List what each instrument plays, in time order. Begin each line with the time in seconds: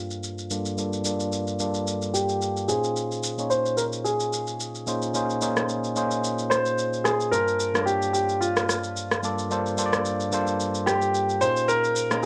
Already playing: tine electric piano G2 A#3 D4 F4 A4 C5 D5 A5, grand piano F4
0.11 shaker
0.23 shaker
0.38 shaker
0.50 tine electric piano G2 A#3 D4 F4 A4 D5, shaker
0.66 shaker
0.77 tine electric piano G2 A#3 D4 F4 A4 D5, shaker
0.93 shaker
1.05 tine electric piano G2 A#3 D4 F4 A4 D5, shaker
1.20 shaker
1.32 shaker
1.47 shaker
1.59 tine electric piano G2 A#3 D4 F4 A4 D5, shaker
1.74 shaker
1.87 shaker
2.02 shaker
2.14 grand piano G4, shaker
2.29 shaker
2.42 shaker
2.57 shaker
2.68 tine electric piano A#2 C#4 D#4 F4 G#4 C5, grand piano G#4, shaker
2.84 shaker
2.96 shaker
3.12 shaker
3.23 shaker
3.38 tine electric piano A#2 C#4 D#4 F4 G#4 C#5, shaker
3.50 grand piano C5, shaker
3.66 shaker
3.77 grand piano A#4, shaker
3.93 shaker
4.04 grand piano G#4, shaker
4.20 shaker
4.33 shaker
4.47 shaker
4.60 shaker
4.75 shaker
4.87 tine electric piano A#2 C#4 D#4 F4 G#4 C5, shaker
5.02 shaker
5.14 tine electric piano A#2 C#4 D#4 F4 G#4 C5, shaker
5.30 shaker
5.41 tine electric piano A#2 C#4 D#4 F4 G#4 C5, shaker
5.57 cross-stick, shaker
5.69 shaker
5.84 shaker
5.96 tine electric piano A#2 C#4 D#4 F4 G#4 C5, shaker
6.11 shaker
6.24 shaker
6.39 shaker
6.50 grand piano C5, cross-stick, shaker
6.66 shaker
6.78 shaker
6.93 shaker
7.04 grand piano G#4, cross-stick, shaker
7.20 shaker
7.31 tine electric piano G2 A#3 D4 F4 C5 A5, grand piano A#4, shaker
7.48 shaker
7.60 shaker
7.74 tine electric piano G2 A#3 D4 F4 A4 C#5, cross-stick, shaker
7.83 grand piano G4, tine electric piano D5
7.87 shaker
8.02 shaker
8.13 grand piano G4, shaker
8.29 shaker
8.41 grand piano F4, shaker
8.57 cross-stick, shaker
8.69 cross-stick, shaker
8.84 shaker
8.97 shaker
9.11 cross-stick, shaker
9.23 tine electric piano G2 A#3 D4 F4 A4 D5, shaker
9.39 shaker
9.50 tine electric piano G2 A#3 D4 F4 A4 C5, shaker
9.66 shaker
9.77 tine electric piano G2 A#3 D4 F4 A4 C5, shaker
9.86 tine electric piano D5
9.93 cross-stick, shaker
10.05 shaker
10.20 shaker
10.32 tine electric piano G2 A#3 D4 F4 A4 C5, shaker
10.47 shaker
10.60 shaker
10.75 shaker
10.86 grand piano G4, cross-stick, shaker
11.02 shaker
11.15 shaker
11.29 shaker
11.41 tine electric piano A#2 C#4 D#4 F4 G#4 A#4, grand piano C5, shaker
11.50 tine electric piano C5
11.57 shaker
11.68 grand piano A#4, shaker
11.84 shaker
11.96 shaker
12.10 tine electric piano A#2 C#4 D#4 F4 G#4 A#4, cross-stick, shaker